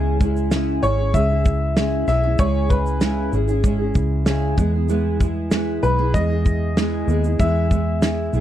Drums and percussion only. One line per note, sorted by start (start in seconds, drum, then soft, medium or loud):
0.21 kick medium
0.21 shaker soft
0.37 shaker soft
0.51 snare medium
0.51 shaker medium
0.83 shaker soft
1.14 kick medium
1.14 shaker medium
1.45 kick medium
1.45 shaker soft
1.77 snare loud
1.77 shaker medium
2.07 snare soft
2.07 shaker soft
2.39 kick loud
2.39 shaker medium
2.70 kick medium
2.70 shaker soft
2.86 shaker soft
3.01 snare loud
3.01 shaker medium
3.33 shaker soft
3.48 shaker soft
3.64 kick medium
3.64 shaker medium
3.95 kick medium
3.95 shaker soft
4.26 snare loud
4.26 shaker medium
4.58 kick loud
4.58 shaker soft
4.89 shaker medium
5.20 kick medium
5.20 shaker soft
5.51 snare loud
5.51 shaker medium
5.83 shaker soft
6.14 kick medium
6.14 shaker medium
6.45 kick medium
6.45 shaker soft
6.77 snare loud
6.77 shaker medium
7.08 shaker soft
7.24 shaker soft
7.40 kick loud
7.40 shaker medium
7.71 kick medium
7.71 shaker soft
8.02 snare loud
8.02 shaker medium
8.33 shaker soft